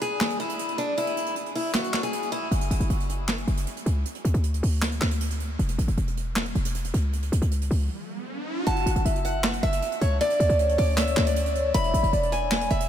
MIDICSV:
0, 0, Header, 1, 6, 480
1, 0, Start_track
1, 0, Key_signature, 3, "minor"
1, 0, Tempo, 384615
1, 1218, Time_signature, 4, 2, 24, 8
1, 16083, End_track
2, 0, Start_track
2, 0, Title_t, "Soft synth lead"
2, 0, Program_c, 0, 80
2, 10815, Note_on_c, 0, 78, 116
2, 11267, Note_off_c, 0, 78, 0
2, 11300, Note_on_c, 0, 76, 90
2, 11750, Note_off_c, 0, 76, 0
2, 12737, Note_on_c, 0, 74, 107
2, 13188, Note_off_c, 0, 74, 0
2, 13221, Note_on_c, 0, 73, 100
2, 14609, Note_off_c, 0, 73, 0
2, 14658, Note_on_c, 0, 76, 114
2, 15109, Note_off_c, 0, 76, 0
2, 15138, Note_on_c, 0, 74, 95
2, 15589, Note_off_c, 0, 74, 0
2, 16083, End_track
3, 0, Start_track
3, 0, Title_t, "Steel-string acoustic guitar"
3, 0, Program_c, 1, 25
3, 19, Note_on_c, 1, 68, 85
3, 470, Note_off_c, 1, 68, 0
3, 496, Note_on_c, 1, 64, 83
3, 948, Note_off_c, 1, 64, 0
3, 975, Note_on_c, 1, 62, 85
3, 1163, Note_off_c, 1, 62, 0
3, 1218, Note_on_c, 1, 64, 101
3, 1669, Note_off_c, 1, 64, 0
3, 1940, Note_on_c, 1, 64, 77
3, 2126, Note_off_c, 1, 64, 0
3, 2176, Note_on_c, 1, 66, 83
3, 2515, Note_off_c, 1, 66, 0
3, 2535, Note_on_c, 1, 68, 83
3, 2875, Note_off_c, 1, 68, 0
3, 2895, Note_on_c, 1, 64, 88
3, 3083, Note_off_c, 1, 64, 0
3, 10816, Note_on_c, 1, 81, 98
3, 11268, Note_off_c, 1, 81, 0
3, 11541, Note_on_c, 1, 78, 74
3, 11990, Note_off_c, 1, 78, 0
3, 12017, Note_on_c, 1, 76, 84
3, 12469, Note_off_c, 1, 76, 0
3, 12498, Note_on_c, 1, 73, 80
3, 12685, Note_off_c, 1, 73, 0
3, 12739, Note_on_c, 1, 74, 109
3, 13190, Note_off_c, 1, 74, 0
3, 13457, Note_on_c, 1, 74, 82
3, 13644, Note_off_c, 1, 74, 0
3, 13699, Note_on_c, 1, 76, 94
3, 14037, Note_off_c, 1, 76, 0
3, 14065, Note_on_c, 1, 74, 78
3, 14625, Note_off_c, 1, 74, 0
3, 14656, Note_on_c, 1, 83, 121
3, 15108, Note_off_c, 1, 83, 0
3, 15378, Note_on_c, 1, 80, 86
3, 15829, Note_off_c, 1, 80, 0
3, 15856, Note_on_c, 1, 76, 81
3, 16083, Note_off_c, 1, 76, 0
3, 16083, End_track
4, 0, Start_track
4, 0, Title_t, "808-style bass"
4, 0, Program_c, 2, 38
4, 3138, Note_on_c, 2, 30, 115
4, 3368, Note_off_c, 2, 30, 0
4, 3378, Note_on_c, 2, 30, 100
4, 3493, Note_off_c, 2, 30, 0
4, 3498, Note_on_c, 2, 30, 100
4, 3613, Note_off_c, 2, 30, 0
4, 3618, Note_on_c, 2, 30, 104
4, 4309, Note_off_c, 2, 30, 0
4, 4337, Note_on_c, 2, 30, 103
4, 4567, Note_off_c, 2, 30, 0
4, 4818, Note_on_c, 2, 37, 100
4, 5048, Note_off_c, 2, 37, 0
4, 5299, Note_on_c, 2, 38, 101
4, 5411, Note_off_c, 2, 38, 0
4, 5418, Note_on_c, 2, 38, 102
4, 5763, Note_off_c, 2, 38, 0
4, 5778, Note_on_c, 2, 38, 103
4, 6239, Note_off_c, 2, 38, 0
4, 6257, Note_on_c, 2, 38, 104
4, 6948, Note_off_c, 2, 38, 0
4, 6979, Note_on_c, 2, 28, 116
4, 7208, Note_off_c, 2, 28, 0
4, 7218, Note_on_c, 2, 32, 103
4, 7333, Note_off_c, 2, 32, 0
4, 7338, Note_on_c, 2, 28, 103
4, 7450, Note_off_c, 2, 28, 0
4, 7457, Note_on_c, 2, 28, 106
4, 8148, Note_off_c, 2, 28, 0
4, 8178, Note_on_c, 2, 28, 104
4, 8639, Note_off_c, 2, 28, 0
4, 8658, Note_on_c, 2, 37, 101
4, 9119, Note_off_c, 2, 37, 0
4, 9137, Note_on_c, 2, 37, 102
4, 9249, Note_off_c, 2, 37, 0
4, 9257, Note_on_c, 2, 37, 99
4, 9602, Note_off_c, 2, 37, 0
4, 9618, Note_on_c, 2, 37, 102
4, 9848, Note_off_c, 2, 37, 0
4, 10817, Note_on_c, 2, 30, 113
4, 11048, Note_off_c, 2, 30, 0
4, 11058, Note_on_c, 2, 30, 103
4, 11173, Note_off_c, 2, 30, 0
4, 11179, Note_on_c, 2, 30, 102
4, 11293, Note_off_c, 2, 30, 0
4, 11299, Note_on_c, 2, 30, 108
4, 11989, Note_off_c, 2, 30, 0
4, 12017, Note_on_c, 2, 30, 108
4, 12248, Note_off_c, 2, 30, 0
4, 12497, Note_on_c, 2, 37, 101
4, 12728, Note_off_c, 2, 37, 0
4, 12977, Note_on_c, 2, 38, 106
4, 13089, Note_off_c, 2, 38, 0
4, 13097, Note_on_c, 2, 38, 106
4, 13443, Note_off_c, 2, 38, 0
4, 13457, Note_on_c, 2, 38, 107
4, 13918, Note_off_c, 2, 38, 0
4, 13937, Note_on_c, 2, 38, 107
4, 14628, Note_off_c, 2, 38, 0
4, 14657, Note_on_c, 2, 28, 116
4, 14887, Note_off_c, 2, 28, 0
4, 14898, Note_on_c, 2, 32, 103
4, 15009, Note_off_c, 2, 32, 0
4, 15017, Note_on_c, 2, 28, 107
4, 15130, Note_off_c, 2, 28, 0
4, 15137, Note_on_c, 2, 28, 106
4, 15828, Note_off_c, 2, 28, 0
4, 15857, Note_on_c, 2, 28, 105
4, 16083, Note_off_c, 2, 28, 0
4, 16083, End_track
5, 0, Start_track
5, 0, Title_t, "Riser"
5, 0, Program_c, 3, 103
5, 8898, Note_on_c, 3, 60, 86
5, 10818, Note_off_c, 3, 60, 0
5, 16083, End_track
6, 0, Start_track
6, 0, Title_t, "Drums"
6, 19, Note_on_c, 9, 42, 65
6, 144, Note_off_c, 9, 42, 0
6, 257, Note_on_c, 9, 39, 90
6, 259, Note_on_c, 9, 38, 116
6, 375, Note_on_c, 9, 42, 59
6, 382, Note_off_c, 9, 39, 0
6, 383, Note_off_c, 9, 38, 0
6, 494, Note_off_c, 9, 42, 0
6, 494, Note_on_c, 9, 42, 58
6, 616, Note_off_c, 9, 42, 0
6, 616, Note_on_c, 9, 42, 79
6, 735, Note_off_c, 9, 42, 0
6, 735, Note_on_c, 9, 42, 90
6, 857, Note_off_c, 9, 42, 0
6, 857, Note_on_c, 9, 42, 58
6, 976, Note_off_c, 9, 42, 0
6, 976, Note_on_c, 9, 42, 67
6, 1100, Note_off_c, 9, 42, 0
6, 1216, Note_on_c, 9, 42, 76
6, 1333, Note_off_c, 9, 42, 0
6, 1333, Note_on_c, 9, 42, 62
6, 1458, Note_off_c, 9, 42, 0
6, 1458, Note_on_c, 9, 42, 80
6, 1575, Note_off_c, 9, 42, 0
6, 1575, Note_on_c, 9, 42, 55
6, 1694, Note_off_c, 9, 42, 0
6, 1694, Note_on_c, 9, 42, 64
6, 1819, Note_off_c, 9, 42, 0
6, 1822, Note_on_c, 9, 42, 50
6, 1939, Note_on_c, 9, 46, 69
6, 1947, Note_off_c, 9, 42, 0
6, 2064, Note_off_c, 9, 46, 0
6, 2175, Note_on_c, 9, 39, 90
6, 2176, Note_on_c, 9, 44, 64
6, 2177, Note_on_c, 9, 38, 117
6, 2295, Note_on_c, 9, 42, 60
6, 2300, Note_off_c, 9, 39, 0
6, 2301, Note_off_c, 9, 38, 0
6, 2301, Note_off_c, 9, 44, 0
6, 2415, Note_on_c, 9, 39, 76
6, 2417, Note_on_c, 9, 38, 99
6, 2420, Note_off_c, 9, 42, 0
6, 2535, Note_on_c, 9, 42, 82
6, 2540, Note_off_c, 9, 39, 0
6, 2542, Note_off_c, 9, 38, 0
6, 2655, Note_off_c, 9, 42, 0
6, 2655, Note_on_c, 9, 42, 90
6, 2778, Note_off_c, 9, 42, 0
6, 2778, Note_on_c, 9, 42, 57
6, 2896, Note_off_c, 9, 42, 0
6, 2896, Note_on_c, 9, 42, 67
6, 3021, Note_off_c, 9, 42, 0
6, 3137, Note_on_c, 9, 42, 78
6, 3255, Note_off_c, 9, 42, 0
6, 3255, Note_on_c, 9, 42, 62
6, 3379, Note_off_c, 9, 42, 0
6, 3379, Note_on_c, 9, 42, 77
6, 3498, Note_off_c, 9, 42, 0
6, 3498, Note_on_c, 9, 42, 54
6, 3616, Note_off_c, 9, 42, 0
6, 3616, Note_on_c, 9, 42, 66
6, 3741, Note_off_c, 9, 42, 0
6, 3743, Note_on_c, 9, 42, 52
6, 3860, Note_off_c, 9, 42, 0
6, 3860, Note_on_c, 9, 42, 65
6, 3985, Note_off_c, 9, 42, 0
6, 4097, Note_on_c, 9, 39, 87
6, 4099, Note_on_c, 9, 38, 112
6, 4216, Note_on_c, 9, 42, 58
6, 4222, Note_off_c, 9, 39, 0
6, 4223, Note_off_c, 9, 38, 0
6, 4334, Note_off_c, 9, 42, 0
6, 4334, Note_on_c, 9, 42, 57
6, 4458, Note_off_c, 9, 42, 0
6, 4458, Note_on_c, 9, 42, 84
6, 4577, Note_off_c, 9, 42, 0
6, 4577, Note_on_c, 9, 42, 90
6, 4700, Note_off_c, 9, 42, 0
6, 4700, Note_on_c, 9, 42, 57
6, 4818, Note_off_c, 9, 42, 0
6, 4818, Note_on_c, 9, 42, 68
6, 4943, Note_off_c, 9, 42, 0
6, 5059, Note_on_c, 9, 42, 75
6, 5176, Note_off_c, 9, 42, 0
6, 5176, Note_on_c, 9, 42, 60
6, 5301, Note_off_c, 9, 42, 0
6, 5301, Note_on_c, 9, 42, 79
6, 5419, Note_off_c, 9, 42, 0
6, 5419, Note_on_c, 9, 42, 56
6, 5535, Note_off_c, 9, 42, 0
6, 5535, Note_on_c, 9, 42, 66
6, 5660, Note_off_c, 9, 42, 0
6, 5664, Note_on_c, 9, 42, 49
6, 5780, Note_on_c, 9, 46, 72
6, 5788, Note_off_c, 9, 42, 0
6, 5905, Note_off_c, 9, 46, 0
6, 6017, Note_on_c, 9, 39, 93
6, 6018, Note_on_c, 9, 44, 68
6, 6019, Note_on_c, 9, 38, 111
6, 6136, Note_on_c, 9, 42, 58
6, 6142, Note_off_c, 9, 39, 0
6, 6143, Note_off_c, 9, 44, 0
6, 6144, Note_off_c, 9, 38, 0
6, 6257, Note_on_c, 9, 39, 78
6, 6259, Note_on_c, 9, 38, 97
6, 6261, Note_off_c, 9, 42, 0
6, 6376, Note_on_c, 9, 42, 80
6, 6382, Note_off_c, 9, 39, 0
6, 6384, Note_off_c, 9, 38, 0
6, 6497, Note_off_c, 9, 42, 0
6, 6497, Note_on_c, 9, 42, 87
6, 6619, Note_off_c, 9, 42, 0
6, 6619, Note_on_c, 9, 42, 59
6, 6738, Note_off_c, 9, 42, 0
6, 6738, Note_on_c, 9, 42, 67
6, 6863, Note_off_c, 9, 42, 0
6, 6978, Note_on_c, 9, 42, 75
6, 7095, Note_off_c, 9, 42, 0
6, 7095, Note_on_c, 9, 42, 61
6, 7219, Note_off_c, 9, 42, 0
6, 7220, Note_on_c, 9, 42, 79
6, 7338, Note_off_c, 9, 42, 0
6, 7338, Note_on_c, 9, 42, 55
6, 7455, Note_off_c, 9, 42, 0
6, 7455, Note_on_c, 9, 42, 67
6, 7580, Note_off_c, 9, 42, 0
6, 7582, Note_on_c, 9, 42, 51
6, 7700, Note_off_c, 9, 42, 0
6, 7700, Note_on_c, 9, 42, 63
6, 7825, Note_off_c, 9, 42, 0
6, 7937, Note_on_c, 9, 39, 91
6, 7939, Note_on_c, 9, 38, 108
6, 8056, Note_on_c, 9, 42, 58
6, 8062, Note_off_c, 9, 39, 0
6, 8063, Note_off_c, 9, 38, 0
6, 8175, Note_off_c, 9, 42, 0
6, 8175, Note_on_c, 9, 42, 60
6, 8297, Note_off_c, 9, 42, 0
6, 8297, Note_on_c, 9, 42, 83
6, 8418, Note_off_c, 9, 42, 0
6, 8418, Note_on_c, 9, 42, 93
6, 8540, Note_off_c, 9, 42, 0
6, 8540, Note_on_c, 9, 42, 56
6, 8659, Note_off_c, 9, 42, 0
6, 8659, Note_on_c, 9, 42, 68
6, 8783, Note_off_c, 9, 42, 0
6, 8899, Note_on_c, 9, 42, 79
6, 9015, Note_off_c, 9, 42, 0
6, 9015, Note_on_c, 9, 42, 61
6, 9140, Note_off_c, 9, 42, 0
6, 9140, Note_on_c, 9, 42, 78
6, 9259, Note_off_c, 9, 42, 0
6, 9259, Note_on_c, 9, 42, 56
6, 9376, Note_off_c, 9, 42, 0
6, 9376, Note_on_c, 9, 42, 66
6, 9501, Note_off_c, 9, 42, 0
6, 9504, Note_on_c, 9, 42, 49
6, 9622, Note_on_c, 9, 46, 70
6, 9629, Note_off_c, 9, 42, 0
6, 9747, Note_off_c, 9, 46, 0
6, 10819, Note_on_c, 9, 42, 80
6, 10936, Note_off_c, 9, 42, 0
6, 10936, Note_on_c, 9, 42, 64
6, 11061, Note_off_c, 9, 42, 0
6, 11061, Note_on_c, 9, 42, 78
6, 11179, Note_off_c, 9, 42, 0
6, 11179, Note_on_c, 9, 42, 54
6, 11296, Note_off_c, 9, 42, 0
6, 11296, Note_on_c, 9, 42, 68
6, 11421, Note_off_c, 9, 42, 0
6, 11426, Note_on_c, 9, 42, 50
6, 11541, Note_off_c, 9, 42, 0
6, 11541, Note_on_c, 9, 42, 66
6, 11666, Note_off_c, 9, 42, 0
6, 11778, Note_on_c, 9, 39, 92
6, 11780, Note_on_c, 9, 38, 115
6, 11895, Note_on_c, 9, 42, 60
6, 11903, Note_off_c, 9, 39, 0
6, 11904, Note_off_c, 9, 38, 0
6, 12014, Note_off_c, 9, 42, 0
6, 12014, Note_on_c, 9, 42, 58
6, 12137, Note_off_c, 9, 42, 0
6, 12137, Note_on_c, 9, 42, 84
6, 12257, Note_off_c, 9, 42, 0
6, 12257, Note_on_c, 9, 42, 90
6, 12378, Note_off_c, 9, 42, 0
6, 12378, Note_on_c, 9, 42, 59
6, 12497, Note_off_c, 9, 42, 0
6, 12497, Note_on_c, 9, 42, 68
6, 12622, Note_off_c, 9, 42, 0
6, 12737, Note_on_c, 9, 42, 78
6, 12853, Note_off_c, 9, 42, 0
6, 12853, Note_on_c, 9, 42, 66
6, 12978, Note_off_c, 9, 42, 0
6, 12978, Note_on_c, 9, 42, 77
6, 13097, Note_off_c, 9, 42, 0
6, 13097, Note_on_c, 9, 42, 57
6, 13214, Note_off_c, 9, 42, 0
6, 13214, Note_on_c, 9, 42, 69
6, 13338, Note_off_c, 9, 42, 0
6, 13342, Note_on_c, 9, 42, 52
6, 13459, Note_on_c, 9, 46, 72
6, 13467, Note_off_c, 9, 42, 0
6, 13584, Note_off_c, 9, 46, 0
6, 13697, Note_on_c, 9, 39, 89
6, 13697, Note_on_c, 9, 44, 67
6, 13698, Note_on_c, 9, 38, 114
6, 13817, Note_on_c, 9, 42, 61
6, 13822, Note_off_c, 9, 39, 0
6, 13822, Note_off_c, 9, 44, 0
6, 13823, Note_off_c, 9, 38, 0
6, 13937, Note_on_c, 9, 39, 81
6, 13939, Note_on_c, 9, 38, 102
6, 13941, Note_off_c, 9, 42, 0
6, 14056, Note_on_c, 9, 42, 85
6, 14062, Note_off_c, 9, 39, 0
6, 14064, Note_off_c, 9, 38, 0
6, 14177, Note_off_c, 9, 42, 0
6, 14177, Note_on_c, 9, 42, 94
6, 14299, Note_off_c, 9, 42, 0
6, 14299, Note_on_c, 9, 42, 60
6, 14417, Note_off_c, 9, 42, 0
6, 14417, Note_on_c, 9, 42, 67
6, 14541, Note_off_c, 9, 42, 0
6, 14657, Note_on_c, 9, 42, 80
6, 14774, Note_off_c, 9, 42, 0
6, 14774, Note_on_c, 9, 42, 62
6, 14899, Note_off_c, 9, 42, 0
6, 14900, Note_on_c, 9, 42, 80
6, 15018, Note_off_c, 9, 42, 0
6, 15018, Note_on_c, 9, 42, 56
6, 15135, Note_off_c, 9, 42, 0
6, 15135, Note_on_c, 9, 42, 66
6, 15260, Note_off_c, 9, 42, 0
6, 15262, Note_on_c, 9, 42, 50
6, 15379, Note_off_c, 9, 42, 0
6, 15379, Note_on_c, 9, 42, 67
6, 15504, Note_off_c, 9, 42, 0
6, 15617, Note_on_c, 9, 39, 92
6, 15619, Note_on_c, 9, 38, 113
6, 15736, Note_on_c, 9, 42, 61
6, 15742, Note_off_c, 9, 39, 0
6, 15744, Note_off_c, 9, 38, 0
6, 15855, Note_off_c, 9, 42, 0
6, 15855, Note_on_c, 9, 42, 58
6, 15978, Note_off_c, 9, 42, 0
6, 15978, Note_on_c, 9, 42, 87
6, 16083, Note_off_c, 9, 42, 0
6, 16083, End_track
0, 0, End_of_file